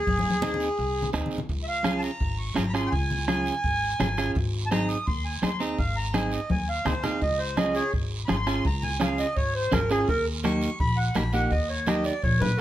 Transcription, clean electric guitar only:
0.42 0.68 C4 medium
0.42 0.68 D#4 medium
0.42 0.68 G#4 medium
1.13 1.39 C4 medium
1.13 1.39 D#4 medium
1.13 1.39 G#4 medium
1.84 2.10 C#4 medium
1.84 2.10 F4 medium
1.84 2.10 G#4 medium
2.56 2.63 C#4 medium
2.56 2.63 F4 medium
2.56 2.63 G#4 medium
2.74 2.93 C#4 medium
2.74 2.93 F4 medium
2.74 2.94 G#4 medium
3.28 3.53 C#4 medium
3.28 3.53 F4 medium
3.28 3.54 G#4 medium
4.00 4.06 C#4 medium
4.00 4.06 F4 medium
4.00 4.07 G#4 loud
4.18 4.36 C#4 medium
4.18 4.36 F4 medium
4.18 4.36 G#4 medium
4.71 4.97 C4 medium
4.71 4.97 D#4 medium
4.71 4.97 G#4 medium
5.43 5.49 C4 medium
5.43 5.49 D#4 medium
5.43 5.50 G#4 medium
5.60 5.79 C4 medium
5.60 5.80 D#4 medium
5.60 5.80 G#4 medium
6.14 6.39 C4 medium
6.14 6.39 D#4 medium
6.14 6.40 G#4 medium
6.85 6.92 C4 medium
6.85 6.92 D#4 medium
6.85 6.92 G#4 medium
7.04 7.22 C4 medium
7.04 7.22 D#4 medium
7.04 7.22 G#4 medium
7.57 7.83 C#4 medium
7.57 7.83 F4 medium
7.57 7.83 G#4 medium
8.28 8.35 C#4 medium
8.28 8.35 F4 medium
8.28 8.36 G#4 medium
8.47 8.66 C#4 medium
8.47 8.66 F4 medium
8.47 8.66 G#4 medium
9.00 9.25 C#4 medium
9.00 9.25 F4 medium
9.00 9.26 G#4 medium
9.72 9.78 C#4 medium
9.72 9.79 F4 medium
9.72 9.79 G#4 medium
9.91 10.08 C#4 medium
9.91 10.09 F4 medium
9.91 10.09 G#4 medium
10.44 10.69 A#3 medium
10.44 10.69 D#4 medium
10.44 10.69 G4 medium
11.15 11.22 A#3 medium
11.15 11.22 D#4 medium
11.15 11.22 G4 medium
11.33 11.52 A#3 medium
11.33 11.52 D#4 medium
11.33 11.53 G4 medium
11.87 12.12 A#3 medium
11.87 12.13 D#4 medium
11.87 12.13 G4 medium

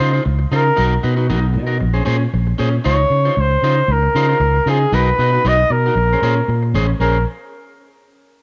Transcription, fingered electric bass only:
0.00 0.19 C#3 loud
0.26 0.45 C#2 loud
0.52 0.70 C#3 loud
0.78 0.97 B1 loud
1.04 1.31 B2 loud
1.30 1.57 B1 loud
1.55 1.83 B2 loud
1.81 2.00 A#1 medium
2.07 2.26 A#2 loud
2.34 2.52 A#1 loud
2.60 2.78 A#2 loud
2.86 3.04 C#2 loud
3.10 3.29 C#3 loud
3.37 3.56 C#2 loud
3.62 3.81 C#3 medium
3.88 4.07 C#2 loud
4.15 4.33 C#3 loud
4.40 4.59 C#2 loud
4.66 4.85 C#3 loud
4.92 5.11 B1 loud
5.19 5.37 B2 loud
5.45 5.63 B1 medium
5.70 5.89 B2 loud
5.95 6.14 A#1 loud
6.22 6.41 A#2 loud
6.48 6.76 A#2 loud
6.74 6.93 A1 loud
7.00 7.24 A#1 loud

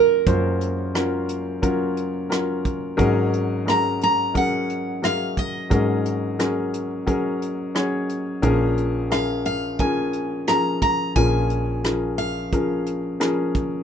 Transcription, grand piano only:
0.00 0.22 F#1 medium
0.00 0.22 F#2 medium
0.00 0.27 F#3 medium
0.00 0.27 C#4 medium
0.00 0.27 F4 medium
0.00 0.95 A#4 medium
0.27 2.95 F#1 medium
0.27 2.95 F#2 medium
0.27 0.72 F#3 medium
0.27 0.72 C#4 medium
0.27 0.72 F4 medium
0.27 0.72 C5 medium
0.94 1.40 F#3 medium
0.94 1.40 C#4 medium
0.94 1.40 F4 medium
0.94 1.40 A#4 medium
1.62 2.08 F#3 medium
1.62 2.08 C#4 medium
1.62 2.08 F4 medium
1.62 2.08 A#4 medium
2.29 2.76 F#3 medium
2.29 2.76 C#4 medium
2.29 2.76 F4 medium
2.29 2.76 A#4 medium
2.97 5.67 G#1 medium
2.97 5.66 G#2 medium
2.97 3.44 F#3 loud
2.97 3.44 C#4 medium
2.97 3.44 G#4 medium
2.97 3.44 A#4 loud
3.65 4.12 F#3 medium
3.65 4.12 C#4 medium
3.65 4.12 G#4 medium
3.65 4.12 A#4 medium
4.34 4.80 F#3 medium
4.34 4.80 C#4 medium
4.34 4.80 G#4 medium
4.34 4.80 A#4 medium
5.02 5.48 F#3 medium
5.02 5.48 C#4 medium
5.02 5.48 G#4 medium
5.02 5.48 A#4 medium
5.70 8.39 G#1 medium
5.70 8.39 G#2 medium
5.70 6.16 F#3 medium
5.70 6.16 C#4 medium
5.70 6.16 G#4 medium
5.70 6.16 A#4 medium
6.39 6.85 F#3 medium
6.39 6.85 C#4 medium
6.39 6.85 G#4 medium
6.39 6.85 A#4 medium
7.06 7.52 F#3 medium
7.06 7.53 C#4 medium
7.06 7.53 G#4 medium
7.06 7.53 A#4 medium
7.75 8.21 F#3 medium
7.75 8.21 C#4 medium
7.75 8.21 G#4 medium
7.75 8.21 C#5 medium
8.42 11.11 A#1 medium
8.42 11.11 A#2 medium
8.42 8.88 F3 loud
8.42 8.89 C#4 medium
8.42 8.89 G#4 medium
8.42 8.88 A#4 loud
9.10 9.57 F3 medium
9.10 9.57 C#4 medium
9.10 9.56 G#4 medium
9.10 9.57 A#4 medium
9.80 10.25 F3 medium
9.80 10.25 C#4 medium
9.80 10.25 G#4 medium
9.80 10.25 A#4 medium
10.49 10.94 F3 medium
10.49 10.94 C#4 medium
10.49 10.94 G#4 medium
10.49 10.94 A#4 medium
11.16 13.83 A#1 medium
11.16 13.83 A#2 medium
11.16 11.62 F3 medium
11.16 11.62 C#4 medium
11.16 11.62 G#4 medium
11.16 11.62 A#4 medium
11.84 12.30 F3 medium
11.84 12.30 C#4 medium
11.84 12.30 G#4 medium
11.84 12.30 A#4 medium
12.53 12.98 F3 medium
12.53 12.98 C#4 medium
12.53 12.98 G#4 medium
12.53 12.98 A#4 medium
13.20 13.66 F3 medium
13.20 13.66 C#4 medium
13.20 13.66 G#4 medium
13.20 13.66 A#4 medium

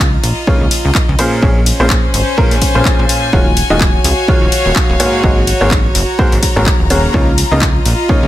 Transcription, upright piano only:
0.47 0.62 C#3 medium
0.47 0.62 A#3 medium
0.47 0.62 D#4 medium
0.47 0.62 F4 medium
0.47 0.62 C#5 loud
1.19 1.40 A#2 medium
1.19 1.40 A#3 medium
1.19 1.40 C#4 medium
1.19 1.40 G#4 medium
1.19 1.40 C5 medium
1.43 1.57 A#2 medium
1.43 1.57 A#3 medium
1.43 1.57 C#4 medium
1.43 1.57 G#4 medium
1.43 1.57 C#5 medium
1.80 1.92 A#2 medium
1.80 1.92 A#3 medium
1.80 1.92 C#4 medium
1.80 1.92 G#4 medium
1.80 1.92 C5 loud
2.38 2.52 A#2 loud
2.38 2.52 A#3 medium
2.38 2.52 C#4 medium
2.38 2.52 G#4 medium
2.38 2.52 A#4 loud
2.75 3.31 A#2 medium
2.75 3.31 A#3 medium
2.75 3.31 C#4 medium
2.75 3.31 G#4 medium
2.75 3.31 C5 medium
3.33 3.48 D#3 medium
3.33 3.48 G#3 medium
3.33 3.48 F4 medium
3.33 3.48 F#4 medium
3.33 3.48 C#5 loud
3.70 3.82 D#3 medium
3.70 3.82 G#3 medium
3.70 3.82 F4 medium
3.70 3.82 F#4 medium
3.70 3.82 D#5 loud
4.28 4.43 D#3 loud
4.28 4.43 G#3 medium
4.28 4.43 F4 medium
4.28 4.43 F#4 medium
4.28 4.43 C#5 loud
5.00 5.21 G#2 medium
5.00 5.21 A#3 medium
5.00 5.21 F#4 medium
5.00 5.21 G#4 medium
5.00 5.21 C#5 loud
5.23 5.38 G#2 medium
5.23 5.38 A#3 medium
5.23 5.38 F#4 medium
5.23 5.38 G#4 medium
5.23 5.38 D#5 medium
5.61 5.73 G#2 medium
5.61 5.73 A#3 medium
5.61 5.73 F#4 medium
5.61 5.73 G#4 medium
5.61 5.73 C#5 loud
6.19 6.33 G#2 medium
6.19 6.33 A#3 medium
6.19 6.33 F#4 medium
6.19 6.33 G#4 medium
6.19 6.33 C5 loud
6.56 6.68 G#2 medium
6.56 6.68 A#3 medium
6.56 6.68 F#4 medium
6.56 6.68 G#4 medium
6.56 6.68 C#5 medium
6.90 7.11 C#3 medium
6.90 7.11 A#3 medium
6.90 7.11 F#4 medium
6.90 7.11 G#4 medium
6.90 7.11 C#5 medium
7.14 7.29 C#3 medium
7.14 7.29 A#3 medium
7.14 7.29 D#4 medium
7.14 7.29 F4 medium
7.14 7.29 C#5 loud
7.52 7.63 C#3 medium
7.52 7.63 A#3 medium
7.52 7.63 D#4 medium
7.52 7.63 F4 medium
7.52 7.63 D#5 loud
8.09 8.24 C#3 medium
8.09 8.24 A#3 medium
8.09 8.24 D#4 medium
8.09 8.24 F4 medium
8.09 8.24 C#5 loud

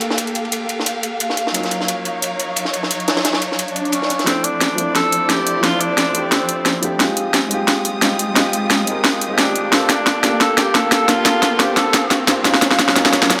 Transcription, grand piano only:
0.00 1.51 A#3 medium
0.00 1.52 D4 medium
0.00 1.53 F4 medium
0.00 1.53 G4 medium
0.00 1.54 A4 medium
1.52 4.24 F#3 medium
1.52 4.25 A#3 medium
1.52 4.25 C#4 medium
1.56 4.26 D#4 medium
1.56 4.27 F4 medium
4.24 4.74 F3 medium
4.24 4.75 A3 medium
4.24 4.76 C4 medium
4.28 4.77 D4 medium
4.28 4.78 E4 medium
4.75 5.26 F3 medium
4.75 5.27 A3 medium
4.75 5.27 C4 medium
4.80 5.28 D4 medium
4.80 5.29 E4 loud
5.28 5.59 F3 medium
5.28 5.60 A3 medium
5.28 5.62 C4 medium
5.28 5.62 D4 medium
5.28 5.62 E4 medium
5.61 6.10 F3 loud
5.61 6.12 A3 medium
5.61 6.13 C4 medium
5.65 6.13 D4 medium
5.65 6.14 E4 loud
6.12 6.79 F3 medium
6.12 6.80 A3 medium
6.12 6.81 C4 medium
6.16 6.82 D4 medium
6.16 6.82 G4 medium
6.81 6.97 F3 medium
6.81 6.98 A3 medium
6.81 6.97 C4 medium
6.81 6.98 D4 medium
6.81 6.99 G4 loud
6.97 7.47 G#3 medium
6.97 7.48 C4 medium
6.97 7.49 D#4 medium
7.01 7.50 F4 medium
7.01 7.51 G4 medium
7.48 7.99 G#3 medium
7.48 8.00 C4 medium
7.48 8.00 D#4 medium
7.53 8.01 F4 medium
7.53 8.02 G4 loud
8.01 8.32 G#3 medium
8.01 8.33 C4 medium
8.01 8.35 D#4 medium
8.01 8.35 F4 medium
8.01 8.35 G4 medium
8.34 8.83 G#3 loud
8.34 8.84 C4 medium
8.34 8.86 D#4 medium
8.38 8.86 F4 medium
8.38 8.87 G4 loud
8.84 9.26 G#3 medium
8.84 9.28 C4 medium
8.84 9.29 D#4 medium
8.89 9.29 F4 medium
8.89 9.30 A#4 medium
9.28 9.71 D#3 medium
9.28 9.69 G#3 medium
9.28 9.70 C4 medium
9.32 9.71 F4 medium
9.32 9.72 G4 medium
9.70 10.19 A#3 medium
9.70 10.21 D4 medium
9.70 10.22 F4 medium
9.74 10.23 G4 medium
9.74 10.23 A4 medium
10.21 10.72 A#3 medium
10.21 10.72 D4 medium
10.21 10.73 F4 medium
10.25 10.74 G4 medium
10.25 10.74 A4 medium
10.73 11.04 A#3 medium
10.73 11.06 D4 medium
10.73 11.07 F4 medium
10.73 11.07 G4 medium
10.73 11.08 A4 medium
11.06 11.56 A#3 loud
11.06 11.57 D4 medium
11.06 11.58 F4 medium
11.10 11.59 G4 medium
11.10 11.60 A4 loud
11.57 12.25 A#3 medium
11.57 12.26 D4 medium
11.57 12.26 F4 medium
11.62 12.27 G4 medium
11.62 12.28 C5 medium
12.27 12.42 A#3 medium
12.27 12.43 D4 medium
12.27 12.43 F4 medium
12.27 12.44 G4 medium
12.27 12.44 C5 loud
12.42 12.92 F#3 medium
12.42 12.93 A#3 medium
12.42 12.95 C#4 medium
12.47 12.95 D#4 medium
12.47 12.96 F4 loud
12.93 13.40 F#3 medium
12.93 13.40 A#3 medium
12.93 13.40 C#4 medium
12.97 13.40 D#4 medium
12.97 13.40 F4 loud

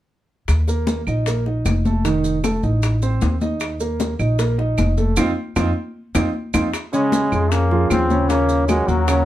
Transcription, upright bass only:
0.48 1.03 D#2 medium
1.07 1.62 A#1 medium
1.65 2.57 F1 medium
2.63 3.18 A1 medium
3.22 4.14 D#2 medium
4.19 4.74 A#1 medium
4.78 5.15 F1 medium
5.17 5.32 F2 medium
5.56 5.71 F2 medium
6.15 6.30 F2 medium
6.54 6.69 F2 medium
7.32 7.87 F2 medium
7.91 8.83 D#2 medium
8.88 9.25 D#2 medium

